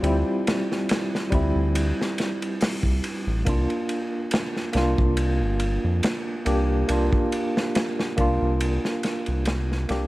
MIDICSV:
0, 0, Header, 1, 4, 480
1, 0, Start_track
1, 0, Tempo, 857143
1, 20, Time_signature, 4, 2, 24, 8
1, 5639, End_track
2, 0, Start_track
2, 0, Title_t, "Tine electric piano"
2, 0, Program_c, 0, 4
2, 0, Control_c, 0, 64, 127
2, 0, Note_on_c, 0, 55, 80
2, 0, Note_on_c, 0, 60, 78
2, 0, Note_on_c, 0, 65, 90
2, 14, Note_off_c, 0, 55, 0
2, 14, Note_on_c, 0, 55, 80
2, 25, Note_off_c, 0, 60, 0
2, 25, Note_on_c, 0, 60, 72
2, 34, Note_on_c, 0, 64, 91
2, 711, Note_off_c, 0, 55, 0
2, 716, Note_off_c, 0, 60, 0
2, 721, Note_off_c, 0, 64, 0
2, 730, Note_on_c, 0, 55, 82
2, 743, Note_on_c, 0, 60, 74
2, 754, Note_on_c, 0, 64, 96
2, 1673, Note_off_c, 0, 55, 0
2, 1679, Note_off_c, 0, 60, 0
2, 1685, Note_off_c, 0, 64, 0
2, 1933, Note_on_c, 0, 58, 85
2, 1943, Note_on_c, 0, 62, 72
2, 1945, Control_c, 0, 64, 0
2, 1949, Note_off_c, 0, 65, 0
2, 1955, Note_on_c, 0, 65, 88
2, 2057, Control_c, 0, 64, 127
2, 2630, Note_off_c, 0, 58, 0
2, 2635, Note_off_c, 0, 62, 0
2, 2641, Note_off_c, 0, 65, 0
2, 2647, Note_on_c, 0, 58, 83
2, 2659, Note_on_c, 0, 62, 78
2, 2672, Note_on_c, 0, 65, 96
2, 3591, Note_off_c, 0, 58, 0
2, 3598, Note_off_c, 0, 62, 0
2, 3604, Note_off_c, 0, 65, 0
2, 3613, Note_on_c, 0, 58, 80
2, 3619, Note_on_c, 0, 62, 77
2, 3625, Note_on_c, 0, 67, 93
2, 3830, Note_off_c, 0, 58, 0
2, 3833, Note_off_c, 0, 62, 0
2, 3836, Note_off_c, 0, 67, 0
2, 3852, Note_on_c, 0, 58, 81
2, 3863, Note_on_c, 0, 62, 76
2, 3874, Note_on_c, 0, 65, 86
2, 4550, Note_off_c, 0, 58, 0
2, 4555, Note_off_c, 0, 62, 0
2, 4561, Note_off_c, 0, 65, 0
2, 4573, Note_on_c, 0, 58, 87
2, 4583, Note_on_c, 0, 62, 80
2, 4596, Note_on_c, 0, 65, 98
2, 5514, Note_off_c, 0, 58, 0
2, 5520, Note_off_c, 0, 62, 0
2, 5526, Note_off_c, 0, 65, 0
2, 5537, Note_on_c, 0, 58, 81
2, 5544, Note_on_c, 0, 62, 77
2, 5548, Note_on_c, 0, 67, 95
2, 5639, Note_off_c, 0, 58, 0
2, 5639, Note_off_c, 0, 62, 0
2, 5639, Note_off_c, 0, 67, 0
2, 5639, End_track
3, 0, Start_track
3, 0, Title_t, "Analog synth bass"
3, 0, Program_c, 1, 38
3, 16, Note_on_c, 1, 38, 95
3, 133, Note_off_c, 1, 38, 0
3, 740, Note_on_c, 1, 38, 84
3, 856, Note_off_c, 1, 38, 0
3, 871, Note_on_c, 1, 38, 100
3, 1079, Note_off_c, 1, 38, 0
3, 1586, Note_on_c, 1, 36, 79
3, 1684, Note_off_c, 1, 36, 0
3, 1832, Note_on_c, 1, 33, 87
3, 1927, Note_off_c, 1, 33, 0
3, 1943, Note_on_c, 1, 36, 96
3, 2057, Note_off_c, 1, 36, 0
3, 2658, Note_on_c, 1, 36, 84
3, 2775, Note_off_c, 1, 36, 0
3, 2790, Note_on_c, 1, 36, 96
3, 3031, Note_on_c, 1, 31, 88
3, 3039, Note_off_c, 1, 36, 0
3, 3239, Note_off_c, 1, 31, 0
3, 3272, Note_on_c, 1, 41, 88
3, 3367, Note_off_c, 1, 41, 0
3, 3619, Note_on_c, 1, 36, 90
3, 3833, Note_off_c, 1, 36, 0
3, 3861, Note_on_c, 1, 36, 95
3, 3976, Note_off_c, 1, 36, 0
3, 4581, Note_on_c, 1, 36, 82
3, 4696, Note_off_c, 1, 36, 0
3, 4716, Note_on_c, 1, 36, 97
3, 4922, Note_off_c, 1, 36, 0
3, 5197, Note_on_c, 1, 36, 90
3, 5522, Note_off_c, 1, 36, 0
3, 5544, Note_on_c, 1, 36, 98
3, 5639, Note_off_c, 1, 36, 0
3, 5639, End_track
4, 0, Start_track
4, 0, Title_t, "Drums"
4, 20, Note_on_c, 9, 51, 57
4, 76, Note_off_c, 9, 51, 0
4, 265, Note_on_c, 9, 51, 71
4, 270, Note_on_c, 9, 38, 96
4, 321, Note_off_c, 9, 51, 0
4, 326, Note_off_c, 9, 38, 0
4, 402, Note_on_c, 9, 38, 38
4, 458, Note_off_c, 9, 38, 0
4, 499, Note_on_c, 9, 51, 84
4, 512, Note_on_c, 9, 38, 100
4, 555, Note_off_c, 9, 51, 0
4, 568, Note_off_c, 9, 38, 0
4, 644, Note_on_c, 9, 38, 49
4, 700, Note_off_c, 9, 38, 0
4, 739, Note_on_c, 9, 51, 63
4, 740, Note_on_c, 9, 36, 89
4, 795, Note_off_c, 9, 51, 0
4, 796, Note_off_c, 9, 36, 0
4, 981, Note_on_c, 9, 51, 91
4, 1037, Note_off_c, 9, 51, 0
4, 1128, Note_on_c, 9, 38, 50
4, 1184, Note_off_c, 9, 38, 0
4, 1221, Note_on_c, 9, 51, 63
4, 1231, Note_on_c, 9, 38, 48
4, 1277, Note_off_c, 9, 51, 0
4, 1287, Note_off_c, 9, 38, 0
4, 1357, Note_on_c, 9, 51, 46
4, 1413, Note_off_c, 9, 51, 0
4, 1460, Note_on_c, 9, 46, 76
4, 1470, Note_on_c, 9, 38, 106
4, 1516, Note_off_c, 9, 46, 0
4, 1526, Note_off_c, 9, 38, 0
4, 1586, Note_on_c, 9, 36, 84
4, 1642, Note_off_c, 9, 36, 0
4, 1701, Note_on_c, 9, 51, 73
4, 1757, Note_off_c, 9, 51, 0
4, 1940, Note_on_c, 9, 51, 86
4, 1941, Note_on_c, 9, 36, 113
4, 1996, Note_off_c, 9, 51, 0
4, 1997, Note_off_c, 9, 36, 0
4, 2071, Note_on_c, 9, 51, 39
4, 2127, Note_off_c, 9, 51, 0
4, 2178, Note_on_c, 9, 51, 61
4, 2234, Note_off_c, 9, 51, 0
4, 2414, Note_on_c, 9, 51, 84
4, 2429, Note_on_c, 9, 38, 113
4, 2470, Note_off_c, 9, 51, 0
4, 2485, Note_off_c, 9, 38, 0
4, 2556, Note_on_c, 9, 38, 37
4, 2612, Note_off_c, 9, 38, 0
4, 2650, Note_on_c, 9, 51, 63
4, 2665, Note_on_c, 9, 38, 42
4, 2706, Note_off_c, 9, 51, 0
4, 2721, Note_off_c, 9, 38, 0
4, 2791, Note_on_c, 9, 36, 96
4, 2847, Note_off_c, 9, 36, 0
4, 2894, Note_on_c, 9, 51, 80
4, 2950, Note_off_c, 9, 51, 0
4, 3134, Note_on_c, 9, 51, 62
4, 3190, Note_off_c, 9, 51, 0
4, 3377, Note_on_c, 9, 51, 86
4, 3385, Note_on_c, 9, 38, 106
4, 3433, Note_off_c, 9, 51, 0
4, 3441, Note_off_c, 9, 38, 0
4, 3617, Note_on_c, 9, 51, 65
4, 3673, Note_off_c, 9, 51, 0
4, 3856, Note_on_c, 9, 51, 80
4, 3912, Note_off_c, 9, 51, 0
4, 3990, Note_on_c, 9, 36, 93
4, 4046, Note_off_c, 9, 36, 0
4, 4100, Note_on_c, 9, 51, 69
4, 4156, Note_off_c, 9, 51, 0
4, 4240, Note_on_c, 9, 38, 56
4, 4296, Note_off_c, 9, 38, 0
4, 4341, Note_on_c, 9, 51, 76
4, 4347, Note_on_c, 9, 38, 111
4, 4397, Note_off_c, 9, 51, 0
4, 4403, Note_off_c, 9, 38, 0
4, 4477, Note_on_c, 9, 38, 51
4, 4533, Note_off_c, 9, 38, 0
4, 4579, Note_on_c, 9, 51, 64
4, 4581, Note_on_c, 9, 36, 92
4, 4635, Note_off_c, 9, 51, 0
4, 4637, Note_off_c, 9, 36, 0
4, 4819, Note_on_c, 9, 51, 78
4, 4875, Note_off_c, 9, 51, 0
4, 4956, Note_on_c, 9, 38, 49
4, 5012, Note_off_c, 9, 38, 0
4, 5058, Note_on_c, 9, 51, 68
4, 5065, Note_on_c, 9, 38, 54
4, 5114, Note_off_c, 9, 51, 0
4, 5121, Note_off_c, 9, 38, 0
4, 5186, Note_on_c, 9, 51, 45
4, 5242, Note_off_c, 9, 51, 0
4, 5294, Note_on_c, 9, 51, 77
4, 5306, Note_on_c, 9, 38, 95
4, 5350, Note_off_c, 9, 51, 0
4, 5362, Note_off_c, 9, 38, 0
4, 5443, Note_on_c, 9, 38, 34
4, 5499, Note_off_c, 9, 38, 0
4, 5538, Note_on_c, 9, 51, 59
4, 5548, Note_on_c, 9, 38, 42
4, 5594, Note_off_c, 9, 51, 0
4, 5604, Note_off_c, 9, 38, 0
4, 5639, End_track
0, 0, End_of_file